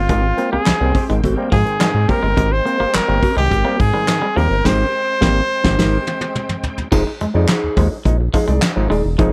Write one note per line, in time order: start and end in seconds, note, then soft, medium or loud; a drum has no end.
0.00 6.88 G#3 medium
0.00 6.88 C4 medium
0.00 0.51 F4 medium
0.00 6.88 C5 medium
0.00 6.89 G5 medium
0.09 0.33 G#1 loud
0.09 0.21 G#2 medium
0.09 0.21 D#3 medium
0.09 0.19 G#3 medium
0.09 0.26 C4 medium
0.09 0.24 G4 medium
0.09 0.23 A#4 loud
0.09 kick loud
0.09 closed hi-hat medium
0.24 muted clean electric guitar stroke soft
0.37 0.49 A#3 medium
0.37 0.50 C4 medium
0.37 muted clean electric guitar stroke soft
0.37 closed hi-hat medium
0.52 0.59 C2 soft
0.52 0.62 A#3 medium
0.52 0.66 C4 medium
0.52 0.65 G4 medium
0.52 1.05 G#4 medium
0.52 0.65 C5 medium
0.66 0.73 C2 medium
0.66 0.76 G3 medium
0.66 snare loud
0.66 clap medium
0.66 closed hi-hat medium
0.80 0.93 C2 medium
0.80 0.92 G3 medium
0.80 0.92 A#3 medium
0.80 0.92 C4 medium
0.80 muted clean electric guitar stroke soft
0.94 1.11 C4 medium
0.94 1.09 G4 medium
0.94 1.10 C5 loud
0.94 kick loud
0.94 open hi-hat medium
1.09 1.21 G#1 medium
1.09 1.21 G#2 medium
1.09 1.21 D#3 medium
1.09 1.19 G#3 medium
1.09 muted clean electric guitar stroke soft
1.09 closed hi-hat medium
1.24 1.35 G#1 loud
1.24 1.35 B3 medium
1.24 1.35 F#4 medium
1.24 1.35 A4 loud
1.24 kick medium
1.24 closed hi-hat medium
1.35 1.49 G3 medium
1.35 1.49 A#3 medium
1.35 1.50 C4 medium
1.35 1.49 C4 medium
1.35 1.50 G4 medium
1.35 1.50 A#4 loud
1.52 1.64 G#2 loud
1.52 1.61 F3 medium
1.52 2.10 G#4 medium
1.52 muted clean electric guitar stroke soft
1.52 kick loud
1.52 open hi-hat medium
1.65 1.77 G#2 medium
1.65 1.77 D#3 soft
1.65 muted clean electric guitar stroke soft
1.65 closed hi-hat medium
1.79 1.92 G#2 medium
1.79 1.92 D#3 medium
1.79 1.90 G3 medium
1.79 muted clean electric guitar stroke soft
1.79 snare loud
1.79 clap loud
1.79 closed hi-hat medium
1.94 2.06 G#2 medium
1.94 muted clean electric guitar stroke soft
2.08 2.20 G3 medium
2.08 2.20 A#3 medium
2.08 2.25 C4 medium
2.08 2.20 C4 medium
2.08 2.23 G4 loud
2.08 2.54 A#4 loud
2.08 2.22 A#4 loud
2.08 muted clean electric guitar stroke soft
2.08 kick medium
2.08 open hi-hat medium
2.23 2.35 G1 loud
2.23 2.32 G#3 medium
2.23 2.29 A#3 soft
2.23 2.29 C4 soft
2.23 muted clean electric guitar stroke soft
2.37 2.61 G#1 medium
2.37 2.49 G#2 medium
2.37 2.49 D#3 medium
2.37 2.46 G#3 medium
2.37 2.53 C4 medium
2.37 2.51 G4 medium
2.37 2.50 A#4 loud
2.37 kick loud
2.37 closed hi-hat medium
2.51 2.97 C5 loud
2.51 muted clean electric guitar stroke medium
2.65 2.77 A#3 medium
2.65 2.77 C4 medium
2.65 muted clean electric guitar stroke soft
2.65 closed hi-hat medium
2.80 2.86 G1 medium
2.80 2.89 A#3 medium
2.80 2.93 C4 medium
2.80 2.93 G4 medium
2.80 2.92 C5 medium
2.94 3.00 G1 soft
2.94 3.03 G3 medium
2.94 3.37 A#4 loud
2.94 snare loud
2.94 clap loud
2.94 closed hi-hat medium
3.08 3.20 G1 medium
3.08 3.20 G3 medium
3.08 3.20 A#3 medium
3.08 3.20 C4 medium
3.08 muted clean electric guitar stroke medium
3.22 3.43 C4 loud
3.22 3.36 G4 loud
3.22 3.36 C5 loud
3.22 kick medium
3.22 open hi-hat medium
3.37 3.49 C2 medium
3.37 3.48 G#2 medium
3.37 3.48 D#3 medium
3.37 3.46 G#3 medium
3.37 3.82 G4 loud
3.37 muted clean electric guitar stroke soft
3.50 3.63 G#1 loud
3.50 3.77 C4 medium
3.50 3.77 G4 loud
3.50 3.78 A#4 loud
3.50 kick medium
3.50 closed hi-hat medium
3.65 3.77 G3 medium
3.65 3.74 A#3 medium
3.65 3.77 A#3 medium
3.65 3.77 C4 medium
3.79 3.92 G#2 medium
3.79 4.38 G#4 loud
3.79 muted clean electric guitar stroke soft
3.79 kick loud
3.79 open hi-hat medium
3.94 4.05 G#2 medium
3.94 4.05 D#3 medium
3.94 4.03 G3 medium
3.94 muted clean electric guitar stroke soft
4.08 4.19 G#2 medium
4.08 4.20 D#3 medium
4.08 muted clean electric guitar stroke soft
4.08 snare loud
4.08 clap medium
4.08 closed hi-hat medium
4.22 4.31 G3 medium
4.22 muted clean electric guitar stroke soft
4.36 4.48 D#2 loud
4.36 4.46 F3 medium
4.36 4.48 G3 medium
4.36 4.48 A#3 medium
4.36 4.48 C4 medium
4.36 4.53 C4 medium
4.36 4.51 G4 medium
4.36 4.67 A#4 medium
4.36 4.50 A#4 medium
4.36 open hi-hat medium
4.50 4.62 G1 loud
4.50 4.56 A#3 soft
4.50 4.56 C4 soft
4.50 muted clean electric guitar stroke medium
4.64 4.85 G#1 loud
4.64 4.84 G#2 loud
4.64 4.84 D#3 loud
4.64 4.85 C4 loud
4.64 4.85 G4 loud
4.64 4.86 A#4 loud
4.64 6.64 C5 loud
4.64 kick loud
4.64 snare loud
4.64 crash medium
5.21 5.41 G#1 loud
5.21 5.41 G3 loud
5.21 5.41 A#3 loud
5.21 5.41 C4 medium
5.21 5.42 C4 loud
5.21 5.41 G4 medium
5.21 5.41 C5 medium
5.21 kick loud
5.21 snare loud
5.64 5.77 G#1 medium
5.64 5.76 G#2 loud
5.64 5.76 D#3 loud
5.64 5.76 C4 loud
5.64 5.77 G4 loud
5.64 5.77 C5 loud
5.64 kick loud
5.64 snare loud
5.78 5.98 G#1 loud
5.78 5.98 G#2 loud
5.78 5.98 D#3 medium
5.78 5.98 C4 loud
5.78 5.98 G4 loud
5.78 5.99 A#4 loud
5.78 kick medium
5.78 snare loud
5.78 crash medium
6.07 high tom medium
6.21 high tom medium
6.35 mid tom medium
6.49 mid tom medium
6.63 floor tom loud
6.78 floor tom medium
6.92 7.04 F1 loud
6.92 7.03 F3 medium
6.92 7.01 F3 medium
6.92 7.03 G#3 medium
6.92 7.08 D#4 medium
6.92 7.04 D#4 loud
6.92 7.06 G#4 medium
6.92 7.05 C5 loud
6.92 kick loud
6.92 crash loud
7.06 muted clean electric guitar stroke soft
7.20 7.27 F2 medium
7.20 7.30 G#3 medium
7.20 muted clean electric guitar stroke soft
7.20 closed hi-hat medium
7.34 7.46 F2 medium
7.34 7.46 F3 medium
7.34 7.46 G#3 medium
7.34 7.46 D#4 medium
7.34 7.48 D#4 medium
7.34 7.47 G#4 medium
7.34 7.47 D5 medium
7.48 7.75 D#4 medium
7.48 7.75 G#4 medium
7.48 7.76 C5 medium
7.48 snare loud
7.48 clap loud
7.48 closed hi-hat medium
7.64 7.69 D#2 soft
7.76 7.89 D#2 medium
7.76 7.88 F3 medium
7.76 7.88 G#3 medium
7.76 7.87 G#3 medium
7.76 7.89 D#4 medium
7.76 kick loud
7.76 open hi-hat medium
7.91 7.97 G#3 soft
7.91 7.97 D#4 soft
7.91 muted clean electric guitar stroke medium
8.05 8.29 A#1 loud
8.05 8.17 G#3 medium
8.05 8.17 D#4 medium
8.05 muted clean electric guitar stroke medium
8.05 kick medium
8.05 closed hi-hat medium
8.21 muted clean electric guitar stroke soft
8.33 8.43 F3 medium
8.33 8.45 G#3 medium
8.33 8.45 D#4 medium
8.33 8.47 D#4 medium
8.33 8.47 G#4 medium
8.33 8.47 C5 medium
8.33 kick loud
8.33 open hi-hat medium
8.47 8.60 C2 medium
8.47 8.57 G#3 medium
8.47 8.61 D#4 medium
8.47 8.61 G#4 medium
8.47 8.60 D5 medium
8.47 closed hi-hat medium
8.62 muted clean electric guitar stroke soft
8.62 snare loud
8.62 clap medium
8.62 closed hi-hat medium
8.76 8.88 G#1 medium
8.76 8.88 F3 medium
8.76 8.88 G#3 medium
8.76 8.88 D#4 medium
8.76 muted clean electric guitar stroke soft
8.90 9.02 D#1 loud
8.90 8.99 G#3 medium
8.90 9.06 D#4 medium
8.90 9.04 G#4 medium
8.90 9.04 D5 medium
8.90 open hi-hat medium
9.05 9.16 E1 loud
9.05 muted clean electric guitar stroke soft
9.18 9.31 F1 loud
9.18 9.30 F3 loud
9.18 9.28 F3 medium
9.18 9.30 G#3 medium
9.18 9.30 D#4 loud
9.18 9.33 D#4 loud
9.18 9.33 G#4 medium
9.18 9.33 C5 medium
9.18 kick loud
9.18 closed hi-hat medium